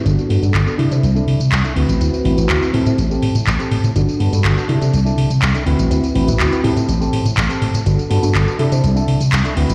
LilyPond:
<<
  \new Staff \with { instrumentName = "Clean electric guitar" } { \time 4/4 \key c \lydian \tempo 4 = 123 r8 <b fis' a'>16 r8 <b fis' a'>16 <d' e' a'>8 r16 <d' e' a'>8 r8 <d' e' a'>16 <c' e' fis' b'>8~ | <c' e' fis' b'>16 r16 <c' e' fis' b'>16 r8 <c' e' fis' b'>16 <c' g' a'>8 r16 <c' g' a'>8 r8 <c' g' a'>8. | r8 <b fis' a'>16 r8 <b fis' a'>16 <d' e' a'>8 r16 <d' e' a'>8 r8 <d' e' a'>16 <c' e' fis' b'>8~ | <c' e' fis' b'>16 r16 <c' e' fis' b'>16 r8 <c' e' fis' b'>16 <c' g' a'>8 r16 <c' g' a'>8 r8 <c' g' a'>8. |
r8 <b fis' a'>16 r8 <b fis' a'>16 <d' e' a'>8 r16 <d' e' a'>8 r8 <d' e' a'>16 <c' e' fis' b'>8 | }
  \new Staff \with { instrumentName = "Analog polysynth" } { \time 4/4 \key c \lydian <b d' fis' a'>8. <b d' fis' a'>8. <d' e' g' a'>16 <d' e' g' c''>16 r2 | <c' e' fis' b'>8. <c' e' fis' b'>8. <c' e' g' b'>16 <c' e' g' c''>16 r2 | <b d' fis' a'>8. <b d' fis' a'>8. <d' e' g' a'>16 <d' e' g' c''>16 r2 | <c' e' fis' b'>8. <c' e' fis' b'>8. <c' e' g' b'>16 <c' e' g' c''>16 r2 |
<b d' fis' a'>8. <b d' fis' a'>8. <d' e' g' a'>16 <d' e' g' c''>16 r2 | }
  \new Staff \with { instrumentName = "Slap bass" } { \clef bass \time 4/4 \key c \lydian g,,16 r16 g,16 g,16 g,,16 r16 c16 c16 c,16 r16 c16 c16 c,16 r16 d,16 a,,16 | d,16 r16 a,,16 a,,16 d,16 r16 a,16 a,16 a,,16 r16 a,16 a,16 a,,16 r16 a,16 a,16 | g,,16 r16 g,16 g,16 g,,16 r16 c16 c16 c,16 r16 c16 c16 c,16 r16 d,16 a,,16 | d,16 r16 a,,16 a,,16 d,16 r16 a,16 a,16 a,,16 r16 a,16 a,16 a,,16 r16 a,16 a,16 |
g,,16 r16 g,16 g,16 g,,16 r16 c16 c16 c,16 r16 c16 c16 c,16 r16 d,16 a,,16 | }
  \new DrumStaff \with { instrumentName = "Drums" } \drummode { \time 4/4 <hh tamb>16 tamb16 hho16 <hh tamb>16 <hc hh tamb>16 tamb16 hho16 <hh tamb>16 <hh tamb>16 tamb16 hho16 <hh tamb>16 <hc hh tamb>16 <hh tamb>16 hho16 <hh tamb>16 | <hh tamb>16 tamb16 hho16 <hh tamb>16 <hc hh tamb>16 tamb16 hho16 <hh tamb>16 <hh tamb>16 tamb16 hho16 <hh tamb>16 <hc hh tamb>16 <hh tamb>16 hho16 <hh tamb>16 | <hh tamb>16 tamb16 hho16 <hh tamb>16 <hc hh tamb>16 tamb16 hho16 <hh tamb>16 <hh tamb>16 tamb16 hho16 <hh tamb>16 <hc hh tamb>16 <hh tamb>16 hho16 <hh tamb>16 | <hh tamb>16 <hh tamb>16 hho16 <hh tamb>16 <hc hh tamb>16 <hh tamb>16 hho16 <hh tamb>16 <hh tamb>16 tamb16 hho16 <hh tamb>16 <hc hh tamb>16 <hh tamb>16 hho16 <hh tamb>16 |
<hh tamb>16 tamb16 hho16 <hh tamb>16 <hc hh tamb>16 tamb16 hho16 <hh tamb>16 <hh tamb>16 tamb16 hho16 <hh tamb>16 <hc hh tamb>16 <hh tamb>16 hho16 <hh tamb>16 | }
>>